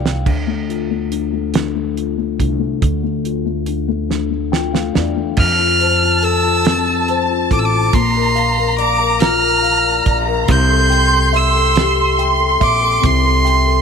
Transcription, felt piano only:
0.00 0.22 D3 medium
0.00 0.28 A3 soft
0.00 0.22 D4 medium
0.00 0.22 F4 medium
0.00 0.23 D5 medium
0.00 0.28 F5 medium
0.00 0.28 G5 medium
0.26 1.52 D3 medium
0.47 0.89 A3 medium
0.69 1.95 F4 soft
0.90 1.31 A3 soft
1.11 2.37 D4 soft
1.32 1.74 A3 soft
1.54 2.79 D3 medium
1.75 2.16 A3 soft
1.96 3.22 F4 medium
2.18 2.58 A3 soft
2.39 3.66 D4 soft
2.59 3.01 A3 soft
2.81 4.08 D3 medium
3.03 3.44 A3 medium
3.24 4.50 F4 medium
3.46 3.87 A3 medium
3.67 4.93 D4 medium
3.88 4.29 A3 medium
4.10 5.34 D3 medium
4.30 4.72 A3 soft
4.52 5.35 F4 medium
4.52 4.72 G5 medium
4.73 5.15 A3 soft
4.73 4.93 F5 medium
4.94 5.36 D4 medium
4.94 5.35 D5 medium
5.16 5.37 A3 medium
5.38 7.90 F3 medium
5.59 6.00 F4 medium
5.80 7.07 C5 medium
6.02 6.43 F4 medium
6.23 7.49 A4 medium
6.44 6.86 F4 medium
6.66 7.90 C4 medium
6.87 7.28 F4 medium
7.08 7.91 C5 medium
7.30 7.70 F4 medium
7.51 7.92 A4 medium
7.72 7.93 F4 medium
7.93 10.45 A#3 medium
8.15 8.56 A#4 medium
8.35 9.61 F5 medium
8.57 8.98 A#4 medium
8.78 10.04 D5 medium
8.99 9.40 A#4 medium
9.20 10.45 F4 medium
9.42 9.82 A#4 medium
9.62 10.46 F5 medium
9.84 10.25 A#4 soft
10.05 10.47 D5 medium
10.26 10.48 A#4 medium
10.48 12.99 C4 medium
10.69 11.10 A4 medium
10.90 12.17 G5 medium
11.11 11.53 A4 medium
11.33 12.59 E5 medium
11.55 11.95 A4 medium
11.76 13.82 G4 medium
11.97 12.37 A4 soft
12.19 13.43 G5 medium
12.39 12.79 A4 medium
12.60 13.82 E5 medium
12.81 13.22 A4 medium
13.01 13.82 C4 medium
13.23 13.65 A4 medium
13.45 13.82 G5 medium
13.66 13.82 A4 medium

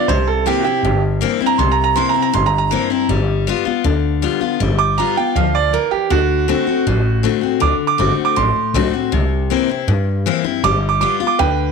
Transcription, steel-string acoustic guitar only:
0.09 0.80 C3 medium
0.46 0.64 E3 medium
0.46 0.64 A#3 medium
0.46 0.64 C4 medium
0.46 0.63 E4 loud
0.65 0.84 C4 medium
0.65 0.83 E4 medium
0.85 1.55 G2 medium
1.21 1.39 E3 medium
1.21 1.39 A#3 medium
1.21 1.40 C4 loud
1.21 1.39 E4 medium
1.40 1.59 C4 medium
1.40 1.58 E4 medium
1.59 2.30 C3 medium
1.96 2.14 E3 medium
1.96 2.14 A#3 medium
1.96 2.15 C4 medium
1.96 2.13 E4 loud
2.14 2.34 C4 soft
2.14 2.33 E4 medium
2.33 3.05 G2 medium
2.71 2.89 E3 medium
2.71 2.90 A#3 medium
2.71 2.90 C4 medium
2.71 2.89 E4 loud
2.90 3.09 C4 medium
2.90 3.08 E4 medium
3.09 3.46 G3 medium
3.47 3.65 G3 medium
3.47 3.66 B3 medium
3.47 3.64 F4 medium
3.65 3.84 B3 medium
3.65 3.84 F4 medium
3.84 4.56 D3 medium
4.22 4.40 G3 medium
4.22 4.41 B3 medium
4.22 4.40 F4 loud
4.41 4.60 B3 medium
4.41 4.59 F4 medium
4.60 4.97 G3 medium
4.98 5.16 G3 medium
4.98 5.16 B3 medium
4.98 5.16 F4 loud
5.17 5.36 B3 medium
5.17 5.35 F4 medium
5.36 5.72 F3 medium
5.74 6.09 E3 medium
6.10 6.47 D3 medium
6.48 6.66 D3 medium
6.48 6.67 A3 medium
6.48 6.67 C4 medium
6.48 6.65 F#4 loud
6.67 6.86 C4 soft
6.67 6.85 F#4 medium
6.87 7.58 A2 medium
7.23 7.42 D3 medium
7.23 7.42 A3 loud
7.23 7.42 C4 medium
7.23 7.40 F#4 loud
7.41 7.61 C4 medium
7.41 7.60 F#4 medium
7.60 7.97 D3 loud
7.98 8.35 D3 medium
7.98 8.35 A3 medium
7.98 8.35 C4 medium
7.98 8.35 F#4 medium
8.36 9.08 A2 medium
8.74 8.93 D3 medium
8.74 8.93 A3 medium
8.74 8.93 C4 loud
8.74 8.92 F#4 loud
8.94 9.13 C4 soft
8.94 9.12 F#4 medium
9.12 9.84 C3 loud
9.50 9.68 E3 medium
9.50 9.69 A#3 medium
9.50 9.69 C4 medium
9.50 9.68 E4 medium
9.69 9.88 C4 medium
9.69 9.87 E4 medium
9.88 10.60 G2 loud
10.26 10.44 E3 medium
10.26 10.44 A#3 loud
10.26 10.44 C4 loud
10.26 10.43 E4 loud
10.44 10.64 C4 medium
10.44 10.63 E4 medium
10.64 11.00 G3 loud
11.01 11.19 G3 medium
11.01 11.20 B3 medium
11.01 11.19 F4 loud
11.20 11.39 B3 soft
11.20 11.38 F4 medium
11.39 11.72 D3 medium

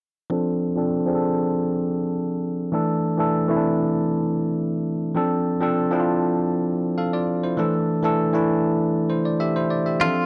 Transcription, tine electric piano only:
0.30 0.72 F3 medium
0.30 0.72 C4 medium
0.30 0.72 D4 medium
0.30 0.73 A4 medium
0.76 1.04 F3 medium
0.76 1.04 C4 medium
0.76 1.04 D4 medium
0.76 1.05 A4 medium
1.06 2.15 F3 medium
1.06 2.16 C4 medium
1.06 2.16 D4 medium
1.06 1.14 G#4 medium
1.15 2.20 A4 medium
2.72 3.14 E3 medium
2.72 3.14 A3 medium
2.72 3.15 D4 medium
2.72 3.15 A4 medium
3.18 3.46 E3 medium
3.18 3.46 A3 medium
3.18 3.47 D4 medium
3.18 3.47 A4 medium
3.48 4.58 E3 medium
3.48 4.58 A3 medium
3.48 3.56 C4 medium
3.48 4.59 E4 medium
3.56 4.62 D4 medium
5.15 5.57 F3 medium
5.15 5.57 C4 medium
5.15 5.57 D4 medium
5.15 5.58 A4 medium
5.60 5.88 F3 medium
5.60 5.89 C4 medium
5.60 5.89 D4 medium
5.60 5.90 A4 medium
5.91 7.00 F3 medium
5.91 7.00 C4 medium
5.91 7.01 D4 medium
5.91 5.99 E4 medium
6.00 7.01 F4 medium
6.98 7.13 A4 medium
6.98 7.13 F5 medium
7.13 7.42 F4 medium
7.13 7.42 D5 medium
7.43 7.73 E4 medium
7.43 7.72 C5 medium
7.57 7.99 E3 medium
7.57 7.99 A3 medium
7.57 8.00 D4 medium
7.57 8.00 A4 medium
8.03 8.31 E3 medium
8.03 8.31 A3 medium
8.03 8.31 D4 medium
8.03 8.32 A4 medium
8.33 9.42 E3 medium
8.33 9.43 A3 medium
8.33 9.43 D4 medium
8.33 9.09 E4 medium
9.10 9.25 E4 medium
9.10 9.25 C5 medium
9.25 9.39 D5 medium
9.40 9.55 G4 medium
9.40 9.55 E5 medium
9.56 9.70 E4 medium
9.56 9.70 C5 medium
9.70 9.85 D5 medium
9.86 10.15 G4 soft
9.86 10.15 E5 medium
9.99 10.07 E3 medium
9.99 10.26 C4 medium
9.99 10.26 D4 medium
9.99 10.26 A4 medium
10.06 10.26 F3 medium

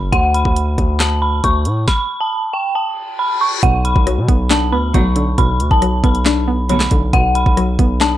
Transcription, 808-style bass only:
0.00 0.12 F#1 loud
0.13 0.44 D2 loud
0.45 0.77 D2 loud
0.78 1.41 D2 loud
1.44 1.67 D2 loud
1.66 1.87 A2 medium
3.63 3.94 B1 loud
3.96 4.19 B1 loud
4.18 4.28 B2 loud
4.28 4.74 B1 loud
4.72 4.93 D2 loud
4.94 5.36 B1 loud
5.38 5.61 B1 loud
5.60 5.70 D2 loud
5.71 6.02 B1 loud
6.04 6.88 B1 loud
6.91 7.12 B1 loud
7.13 7.45 B1 loud
7.46 7.78 B1 loud
7.79 8.18 B1 loud

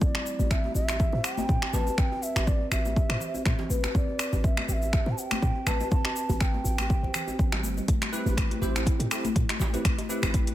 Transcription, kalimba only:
0.01 0.13 C4 loud
0.50 0.63 C4 medium
0.88 0.95 G4 medium
1.13 1.23 C5 medium
1.38 1.48 C4 medium
1.62 1.73 C4 medium
1.74 1.86 B4 medium
1.87 1.93 G4 medium
1.98 2.10 C4 loud
2.85 2.91 G4 medium
2.96 3.09 G4 medium
3.10 3.20 C5 medium
3.35 3.45 C4 medium
3.59 3.70 C4 medium
3.70 3.82 B4 medium
3.84 3.90 G4 medium
3.95 4.07 C4 loud
4.82 4.88 G4 medium
4.93 5.05 G4 medium
5.06 5.17 C5 medium
5.31 5.41 C4 medium
5.56 5.66 C4 medium
5.67 5.79 B4 medium
5.81 5.86 G4 medium
5.91 6.04 C4 medium
6.41 6.53 C4 medium
6.79 6.85 G4 medium
6.90 7.02 G4 loud
7.03 7.13 C5 medium
7.28 7.38 C4 medium
7.53 7.63 G3 loud
7.64 7.71 G3 medium
7.78 7.88 G3 medium
7.88 8.00 A3 loud
8.38 8.50 A3 medium
8.76 8.82 E4 medium
8.87 8.99 E4 medium
9.00 9.10 A4 medium
9.25 9.35 A3 medium
9.50 9.60 A3 medium
9.61 9.73 G4 medium
9.74 9.80 E4 medium
9.85 9.97 A3 loud
10.34 10.46 A3 medium

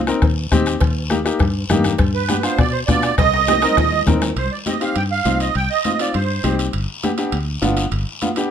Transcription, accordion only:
2.14 2.42 B4 medium
2.43 2.59 C5 medium
2.59 2.72 D5 medium
2.72 2.79 C5 medium
2.87 3.15 D5 loud
3.17 4.02 D#5 loud
4.38 4.52 C5 medium
4.52 4.58 D5 medium
4.67 4.82 D#5 medium
4.82 4.95 F5 medium
4.96 5.03 G5 medium
5.12 5.39 F5 medium
5.42 5.55 D#5 medium
5.56 5.69 G5 loud
5.70 6.00 D#5 medium
6.00 6.15 D5 medium
6.14 6.56 C5 medium

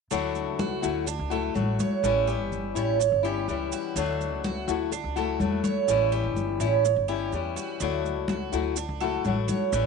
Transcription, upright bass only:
0.11 0.46 D2 medium
0.46 0.81 C#2 medium
0.83 1.17 D2 loud
1.19 1.54 C#2 medium
1.55 1.78 A1 medium
2.03 2.39 A1 loud
2.39 2.74 G1 medium
2.75 3.10 A1 medium
3.12 3.46 G1 medium
3.48 3.71 C#2 medium
3.96 4.31 D2 loud
4.31 4.66 C#2 medium
4.68 5.02 D2 medium
5.04 5.38 C#2 medium
5.39 5.63 E2 medium
5.88 6.25 A1 medium
6.23 6.58 G1 medium
6.60 6.95 A1 loud
6.96 7.31 G1 medium
7.32 7.56 E2 medium
7.80 8.16 D2 loud
8.16 8.51 C#2 medium
8.53 8.87 D2 medium
8.89 9.23 C#2 medium
9.25 9.48 A1 medium
9.72 9.86 A1 loud

